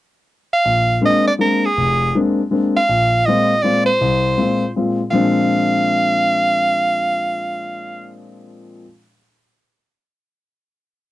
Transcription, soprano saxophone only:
0.53 1.00 F5 medium
1.05 1.26 D#5 loud
1.28 1.33 D5 medium
1.41 1.67 A#4 medium
1.65 2.15 G#4 medium
2.77 3.27 F5 medium
3.26 3.64 D#5 medium
3.62 3.85 D5 medium
3.86 4.70 C5 medium
5.11 8.09 F5 medium

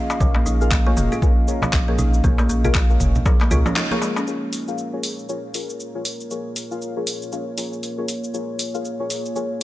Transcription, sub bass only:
0.21 0.33 A#1 loud
0.46 0.94 A#1 medium
0.97 1.09 F1 medium
1.73 2.21 A#1 loud
2.24 2.36 A#1 loud
2.49 2.97 A#1 medium
3.00 3.12 F1 medium
3.51 3.63 C#2 loud

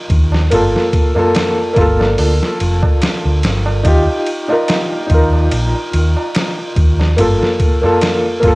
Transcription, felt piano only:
0.00 0.46 D#4 medium
0.00 0.48 F4 medium
0.00 0.49 A#4 medium
0.50 1.10 A#3 medium
0.50 1.11 F4 medium
0.50 1.12 A4 medium
1.15 1.71 A#3 medium
1.15 1.72 F4 medium
1.15 1.73 A4 loud
1.73 3.79 A#3 medium
1.73 3.81 F4 medium
1.81 3.83 A4 loud
3.83 4.43 D#4 medium
3.83 4.44 F4 medium
3.87 4.45 G4 medium
4.48 5.05 D#4 medium
4.48 5.06 F4 medium
4.52 5.07 A#4 medium
5.07 7.12 D#4 medium
5.07 7.14 F4 medium
5.14 7.16 A#4 medium
7.17 7.77 A#3 medium
7.17 7.78 F4 medium
7.17 7.79 A4 medium
7.82 8.38 A#3 medium
7.82 8.39 F4 medium
7.82 8.40 A4 loud
8.40 8.55 A#3 medium
8.40 8.55 F4 medium
8.48 8.55 A4 loud

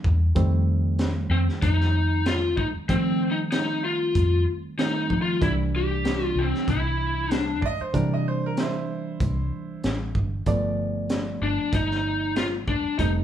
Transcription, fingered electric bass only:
0.04 0.34 E2 medium
0.36 1.27 F2 medium
1.30 1.47 F2 medium
1.62 2.57 F2 medium
2.57 2.73 C2 medium
2.75 muted fingered electric bass stroke soft
2.89 4.11 F3 medium
4.15 4.45 F2 loud
5.10 5.39 F3 medium
5.41 6.32 C2 medium
6.35 6.52 C2 medium
6.67 7.62 C2 medium
7.62 7.79 G2 medium
7.81 muted fingered electric bass stroke soft
7.94 9.16 C3 medium
9.20 9.50 C2 medium
9.84 10.12 A1 medium
10.15 10.43 G1 medium
10.46 11.37 G1 medium
11.42 11.58 G1 medium
11.73 12.68 G1 medium
12.68 12.84 D2 medium
12.85 muted fingered electric bass stroke soft
12.99 13.24 F1 medium

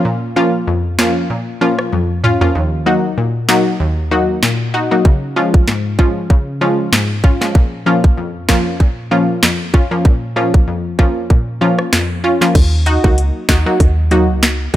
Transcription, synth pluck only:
0.05 0.53 A#2 medium
0.36 0.50 F3 medium
0.36 0.50 A#3 medium
0.36 0.50 C#4 medium
0.36 0.50 F4 loud
0.68 1.15 F2 medium
0.99 1.13 F3 medium
0.99 1.13 A#3 medium
0.99 1.13 C#4 medium
0.99 1.13 F4 loud
1.30 1.78 A#2 medium
1.61 1.75 F3 medium
1.61 1.75 A#3 medium
1.61 1.75 C#4 medium
1.61 1.75 F4 medium
1.93 2.40 F2 medium
2.24 2.31 C#4 medium
2.24 2.31 F4 loud
2.41 2.52 F3 medium
2.41 2.52 A#3 medium
2.41 2.52 C#4 medium
2.41 2.52 F4 medium
2.55 3.03 D#2 medium
2.86 3.00 F#3 medium
2.86 3.00 A#3 medium
2.86 3.00 D#4 medium
2.86 3.00 F#4 loud
3.18 3.65 A#2 medium
3.49 3.63 F#3 medium
3.49 3.63 A#3 medium
3.49 3.63 D#4 medium
3.49 3.63 F#4 loud
3.80 4.28 D#2 medium
4.11 4.25 F#3 medium
4.11 4.25 A#3 medium
4.11 4.25 D#4 medium
4.11 4.25 F#4 medium
4.43 4.91 A#2 medium
4.74 4.81 D#4 medium
4.74 4.81 F#4 loud
4.91 5.02 F#3 medium
4.91 5.02 A#3 medium
4.91 5.02 D#4 medium
4.91 5.02 F#4 medium
5.05 5.53 C#3 medium
5.36 5.50 F3 medium
5.36 5.50 G#3 medium
5.36 5.50 C#4 medium
5.36 5.50 F4 loud
5.68 6.15 G#2 medium
5.99 6.13 F3 medium
5.99 6.13 G#3 medium
5.99 6.13 C#4 medium
5.99 6.13 F4 loud
6.30 6.78 C#3 medium
6.61 6.75 F3 medium
6.61 6.75 G#3 medium
6.61 6.75 C#4 medium
6.61 6.75 F4 medium
6.93 7.40 G#2 medium
7.24 7.31 C#4 medium
7.24 7.31 F4 loud
7.41 7.52 F3 medium
7.41 7.52 G#3 medium
7.41 7.52 C#4 medium
7.41 7.52 F4 medium
7.55 8.03 A#2 medium
7.86 8.00 F3 medium
7.86 8.00 A#3 medium
7.86 8.00 C#4 medium
7.86 8.00 F4 loud
8.18 8.65 F2 medium
8.49 8.63 F3 medium
8.49 8.63 A#3 medium
8.49 8.63 C#4 medium
8.49 8.63 F4 loud
8.80 9.28 A#2 medium
9.11 9.25 F3 medium
9.11 9.25 A#3 medium
9.11 9.25 C#4 medium
9.11 9.25 F4 loud
9.43 9.90 F2 medium
9.74 9.81 C#4 medium
9.74 9.81 F4 medium
9.91 10.02 F3 medium
9.91 10.02 A#3 medium
9.91 10.02 C#4 medium
9.91 10.02 F4 medium
10.05 10.53 A#2 medium
10.36 10.50 F3 medium
10.36 10.50 A#3 medium
10.36 10.50 C#4 medium
10.36 10.50 F4 loud
10.68 11.15 F2 medium
10.99 11.13 F3 medium
10.99 11.13 A#3 medium
10.99 11.13 C#4 medium
10.99 11.13 F4 loud
11.30 11.78 A#2 medium
11.61 11.75 F3 medium
11.61 11.75 A#3 medium
11.61 11.75 C#4 medium
11.61 11.75 F4 medium
11.93 12.40 F2 medium
12.24 12.31 C#4 medium
12.24 12.31 F4 loud
12.41 12.52 F3 medium
12.41 12.52 A#3 medium
12.41 12.52 C#4 medium
12.41 12.52 F4 medium
12.86 12.93 D#4 medium
12.86 12.93 F#4 loud
13.04 13.15 F#3 medium
13.04 13.15 A#3 medium
13.04 13.15 D#4 medium
13.04 13.15 F#4 medium
13.49 13.56 D#4 medium
13.49 13.56 F#4 loud
13.66 13.77 F#3 medium
13.66 13.77 A#3 medium
13.66 13.77 D#4 medium
13.66 13.77 F#4 medium
14.11 14.25 F#3 medium
14.11 14.25 A#3 medium
14.11 14.25 D#4 medium
14.11 14.25 F#4 medium

